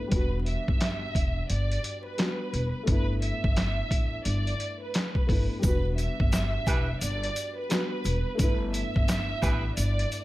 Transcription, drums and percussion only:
0.12 kick loud
0.12 closed hi-hat medium
0.46 closed hi-hat medium
0.68 kick loud
0.81 snare loud
0.81 clap medium
0.81 closed hi-hat medium
1.15 kick medium
1.15 closed hi-hat medium
1.50 closed hi-hat loud
1.72 closed hi-hat medium
1.84 closed hi-hat medium
2.18 snare loud
2.18 clap medium
2.18 closed hi-hat medium
2.54 closed hi-hat medium
2.87 kick loud
2.87 closed hi-hat medium
3.22 closed hi-hat medium
3.44 kick loud
3.56 snare loud
3.56 clap medium
3.56 closed hi-hat medium
3.91 kick medium
3.91 closed hi-hat medium
4.25 closed hi-hat medium
4.47 closed hi-hat medium
4.60 closed hi-hat medium
4.94 snare loud
4.94 clap medium
4.94 closed hi-hat medium
5.15 kick medium
5.29 kick medium
5.29 open hi-hat medium
5.63 kick loud
5.63 closed hi-hat medium
5.63 shaker medium
5.98 closed hi-hat medium
5.98 shaker soft
6.20 kick loud
6.32 snare loud
6.32 clap medium
6.32 closed hi-hat medium
6.32 shaker medium
6.67 kick medium
6.67 closed hi-hat medium
6.67 high woodblock medium
6.67 shaker medium
7.01 closed hi-hat loud
7.01 shaker medium
7.24 closed hi-hat medium
7.36 closed hi-hat medium
7.36 shaker medium
7.70 snare loud
7.70 clap medium
7.70 closed hi-hat medium
7.70 shaker medium
8.05 closed hi-hat medium
8.05 shaker medium
8.39 kick loud
8.39 closed hi-hat medium
8.39 shaker medium
8.74 closed hi-hat medium
8.74 shaker soft
8.96 kick loud
9.08 snare loud
9.08 clap medium
9.08 closed hi-hat medium
9.08 shaker medium
9.43 kick medium
9.43 closed hi-hat medium
9.43 high woodblock medium
9.43 shaker medium
9.77 closed hi-hat loud
9.77 shaker medium
9.99 closed hi-hat medium
10.12 closed hi-hat medium
10.12 shaker soft

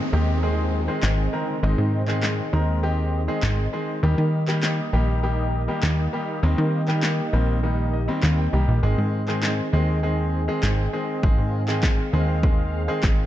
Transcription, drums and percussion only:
1.03 snare medium
1.03 clap loud
2.08 clap medium
2.23 snare medium
2.23 clap loud
3.43 snare medium
3.43 clap loud
4.48 clap medium
4.63 snare medium
4.63 clap loud
5.83 snare medium
5.83 clap loud
6.88 clap medium
7.03 snare medium
7.03 clap loud
8.23 snare medium
8.23 clap loud
9.28 clap medium
9.43 snare medium
9.43 clap loud
10.63 snare medium
10.63 clap loud
11.23 kick loud
11.68 clap medium
11.83 kick loud
11.83 snare medium
11.83 clap loud
12.43 kick loud
13.03 kick loud
13.03 snare medium
13.03 clap loud

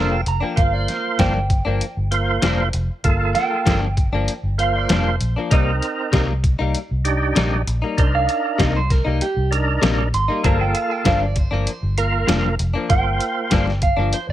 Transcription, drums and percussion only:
0.26 closed hi-hat medium
0.57 kick loud
0.57 closed hi-hat medium
0.88 snare soft
0.88 closed hi-hat medium
1.19 kick medium
1.19 snare loud
1.19 closed hi-hat medium
1.50 kick medium
1.50 closed hi-hat medium
1.81 closed hi-hat medium
2.12 closed hi-hat medium
2.42 snare loud
2.42 closed hi-hat loud
2.73 closed hi-hat medium
3.04 kick loud
3.04 closed hi-hat medium
3.35 snare soft
3.35 closed hi-hat medium
3.66 kick medium
3.66 snare loud
3.66 closed hi-hat medium
3.97 kick medium
3.97 closed hi-hat medium
4.28 closed hi-hat medium
4.59 closed hi-hat soft
4.89 snare loud
4.89 closed hi-hat medium
5.21 closed hi-hat medium
5.51 kick loud
5.51 closed hi-hat medium
5.82 closed hi-hat soft
6.13 kick medium
6.13 snare medium
6.13 closed hi-hat medium
6.44 kick medium
6.44 closed hi-hat medium
6.75 closed hi-hat medium
7.05 closed hi-hat medium
7.36 snare loud
7.36 closed hi-hat medium
7.67 closed hi-hat medium
7.98 kick loud
7.98 closed hi-hat medium
8.29 closed hi-hat medium
8.59 kick medium
8.59 snare medium
8.59 closed hi-hat medium
8.90 kick medium
8.90 snare soft
8.90 closed hi-hat medium
9.21 closed hi-hat medium
9.52 closed hi-hat medium
9.83 snare loud
9.83 closed hi-hat medium
10.14 closed hi-hat medium
10.44 kick loud
10.44 closed hi-hat medium
10.75 closed hi-hat medium
11.05 kick medium
11.05 snare loud
11.05 closed hi-hat medium
11.36 kick medium
11.36 closed hi-hat medium
11.67 closed hi-hat medium
11.98 closed hi-hat medium
12.28 snare loud
12.28 closed hi-hat medium
12.59 closed hi-hat medium
12.90 kick loud
12.90 closed hi-hat medium
13.21 closed hi-hat medium
13.51 kick medium
13.51 snare loud
13.51 closed hi-hat medium
13.67 snare soft
13.82 kick medium
13.82 closed hi-hat medium
14.13 closed hi-hat medium

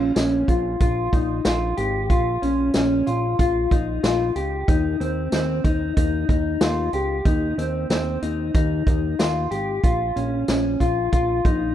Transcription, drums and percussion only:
0.16 snare medium
0.16 closed hi-hat medium
0.16 tambourine medium
0.48 kick medium
0.48 closed hi-hat medium
0.80 kick loud
0.80 closed hi-hat medium
1.13 kick medium
1.13 closed hi-hat soft
1.45 snare loud
1.45 closed hi-hat medium
1.45 tambourine medium
1.77 closed hi-hat medium
2.10 kick loud
2.10 closed hi-hat medium
2.43 closed hi-hat soft
2.74 snare loud
2.74 closed hi-hat medium
2.74 tambourine medium
3.07 closed hi-hat medium
3.39 kick loud
3.39 closed hi-hat medium
3.71 kick medium
3.71 closed hi-hat soft
4.04 snare loud
4.04 closed hi-hat medium
4.04 tambourine medium
4.36 closed hi-hat soft
4.68 kick loud
4.68 closed hi-hat medium
5.01 closed hi-hat soft
5.32 snare medium
5.32 closed hi-hat medium
5.32 tambourine medium
5.64 kick medium
5.64 closed hi-hat medium
5.97 kick medium
5.97 closed hi-hat medium
6.29 kick medium
6.29 closed hi-hat soft
6.61 snare loud
6.61 closed hi-hat medium
6.61 tambourine medium
6.93 closed hi-hat medium
7.25 kick loud
7.25 closed hi-hat medium
7.59 closed hi-hat medium
7.90 snare medium
7.90 closed hi-hat medium
7.90 tambourine medium
8.22 closed hi-hat medium
8.55 kick loud
8.55 closed hi-hat medium
8.87 kick loud
8.87 closed hi-hat soft
9.19 snare loud
9.19 closed hi-hat medium
9.19 tambourine medium
9.51 closed hi-hat medium
9.84 kick loud
9.84 closed hi-hat medium
10.16 closed hi-hat soft
10.48 snare medium
10.48 closed hi-hat medium
10.48 tambourine medium
10.80 kick medium
10.80 closed hi-hat medium
11.13 kick medium
11.13 closed hi-hat medium
11.45 kick loud
11.45 closed hi-hat soft

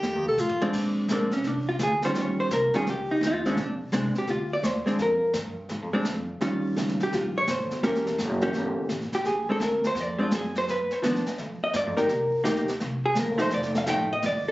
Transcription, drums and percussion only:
0.03 brush sweep soft
0.03 snare soft
0.38 floor tom soft
0.38 hi-hat pedal medium
0.49 floor tom medium
0.61 floor tom medium
0.73 brush sweep soft
0.73 kick medium
0.73 snare soft
0.73 crash medium
1.09 snare medium
1.09 hi-hat pedal medium
1.31 snare soft
1.44 brush sweep soft
1.44 snare soft
1.79 snare medium
1.79 hi-hat pedal medium
2.02 snare soft
2.15 brush sweep soft
2.15 snare soft
2.51 snare medium
2.51 hi-hat pedal medium
2.73 snare soft
2.87 brush sweep soft
2.87 snare soft
3.23 snare medium
3.23 hi-hat pedal medium
3.45 snare soft
3.57 brush sweep soft
3.57 snare soft
3.92 snare medium
3.92 hi-hat pedal soft
4.15 snare soft
4.27 brush sweep soft
4.27 snare soft
4.63 snare medium
4.63 hi-hat pedal medium
4.86 kick soft
4.86 snare soft
4.99 brush sweep soft
4.99 snare soft
5.33 snare medium
5.33 hi-hat pedal medium
5.69 brush sweep soft
5.69 snare soft
6.05 snare medium
6.05 hi-hat pedal medium
6.41 brush sweep soft
6.41 snare soft
6.77 snare medium
6.77 hi-hat pedal medium
6.88 snare soft
7.00 snare soft
7.12 brush sweep soft
7.12 snare soft
7.47 snare medium
7.47 hi-hat pedal medium
7.71 snare soft
7.83 brush sweep soft
7.83 snare soft
7.95 snare soft
8.07 snare soft
8.19 snare medium
8.19 hi-hat pedal medium
8.41 snare soft
8.53 brush sweep soft
8.53 snare soft
8.89 snare medium
8.89 hi-hat pedal medium
9.01 snare soft
9.12 snare soft
9.25 brush sweep soft
9.25 snare soft
9.61 snare medium
9.61 hi-hat pedal medium
9.84 snare soft
9.96 brush sweep medium
9.96 snare soft
10.31 snare medium
10.31 hi-hat pedal medium
10.55 snare soft
10.68 brush sweep soft
10.68 snare soft
10.91 snare soft
11.03 snare medium
11.03 hi-hat pedal medium
11.15 snare soft
11.26 snare soft
11.38 brush sweep medium
11.38 snare soft
11.73 snare medium
11.73 hi-hat pedal medium
11.97 snare soft
12.09 brush sweep soft
12.09 snare soft
12.45 snare medium
12.45 hi-hat pedal medium
12.56 snare soft
12.68 snare soft
12.80 brush sweep soft
12.80 snare soft
13.15 snare medium
13.15 hi-hat pedal medium
13.38 snare soft
13.50 brush sweep soft
13.50 snare soft
13.63 snare soft
13.75 snare soft
13.86 snare medium
13.86 hi-hat pedal medium
14.22 brush sweep medium
14.22 snare soft

